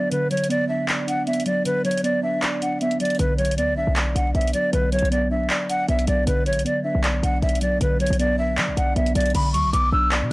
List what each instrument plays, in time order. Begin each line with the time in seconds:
Already playing: synth keys D3 F#3 B3 D4 D5
0.11 synth keys D3, flute B4, closed hi-hat
0.31 synth keys F#3, flute C#5, closed hi-hat
0.37 closed hi-hat
0.44 closed hi-hat
0.49 synth keys B3, flute D5, closed hi-hat
0.69 synth keys D4, flute E5
0.88 synth keys D5, clap, closed hi-hat
1.07 synth keys D4, flute F#5, closed hi-hat
1.27 synth keys B3, flute E5, closed hi-hat
1.33 closed hi-hat
1.40 closed hi-hat
1.46 synth keys F#3, flute D5, closed hi-hat
1.65 synth keys D3, flute B4, closed hi-hat
1.85 synth keys F#3, flute C#5, closed hi-hat
1.91 closed hi-hat
1.98 closed hi-hat
2.04 synth keys B3, flute D5, closed hi-hat
2.23 synth keys D4, flute E5
2.42 synth keys D5, clap, closed hi-hat
2.62 synth keys D4, flute F#5, closed hi-hat
2.81 synth keys B3, flute E5, closed hi-hat
2.91 closed hi-hat
3.00 synth keys F#3, flute D5, closed hi-hat
3.05 closed hi-hat
3.10 closed hi-hat
3.15 closed hi-hat
3.19 808-style bass B1, synth keys D3, flute B4, closed hi-hat
3.38 synth keys F#3, flute C#5, closed hi-hat
3.45 closed hi-hat
3.51 closed hi-hat
3.57 808-style bass D2, synth keys B3, flute D5, closed hi-hat
3.73 808-style bass B1
3.77 synth keys D4, flute E5
3.87 808-style bass B1
3.96 synth keys D5, clap, closed hi-hat
4.15 808-style bass B1, synth keys D4, flute F#5, closed hi-hat
4.34 808-style bass B1, synth keys B3, flute E5, closed hi-hat
4.41 closed hi-hat
4.47 closed hi-hat
4.53 synth keys F#3, flute D5, closed hi-hat
4.73 808-style bass B1, synth keys D3, flute B4, closed hi-hat
4.92 synth keys F#3, flute C#5, closed hi-hat
4.99 808-style bass B1, closed hi-hat
5.05 closed hi-hat
5.11 synth keys B3, flute D5, closed hi-hat
5.31 synth keys D4, flute E5
5.50 synth keys D5, clap, closed hi-hat
5.70 synth keys D4, flute F#5, closed hi-hat
5.88 808-style bass B1, synth keys B3, flute E5, closed hi-hat
5.99 closed hi-hat
6.07 808-style bass B1, synth keys F#3, flute D5, closed hi-hat
6.27 808-style bass B1, synth keys D3, flute B4, closed hi-hat
6.46 808-style bass A1, synth keys F#3, flute C#5, closed hi-hat
6.53 808-style bass B1, closed hi-hat
6.59 closed hi-hat
6.65 synth keys B3, flute D5, closed hi-hat
6.84 synth keys D4, flute E5
6.95 808-style bass B1
7.04 synth keys D5, clap, closed hi-hat
7.23 808-style bass B1, synth keys D4, flute F#5, closed hi-hat
7.42 808-style bass B1, synth keys B3, flute E5, closed hi-hat
7.49 closed hi-hat
7.55 closed hi-hat
7.61 synth keys F#3, flute D5, closed hi-hat
7.81 808-style bass B1, synth keys D3, flute B4, closed hi-hat
8.00 synth keys F#3, flute C#5, closed hi-hat
8.06 808-style bass B1, closed hi-hat
8.13 closed hi-hat
8.19 synth keys B3, flute D5, closed hi-hat
8.38 synth keys D4, flute E5
8.57 808-style bass F#3, synth keys D5, clap, closed hi-hat
8.68 808-style bass B1
8.77 808-style bass B1, synth keys D4, flute F#5, closed hi-hat
8.96 808-style bass B1, synth keys B3, flute E5, closed hi-hat
9.06 closed hi-hat
9.15 808-style bass B1, synth keys F#3, flute D5, closed hi-hat
9.20 closed hi-hat
9.26 closed hi-hat
9.30 closed hi-hat
9.35 808-style bass B1, synth keys D3, flute B5, closed hi-hat, crash
9.53 808-style bass D2, synth keys F#3, flute C#6, closed hi-hat
9.64 808-style bass B1
9.73 808-style bass B1, synth keys B3, flute D6, closed hi-hat
9.92 808-style bass B1, synth keys D4, flute E6
10.12 synth keys D5, clap, closed hi-hat
10.22 808-style bass B2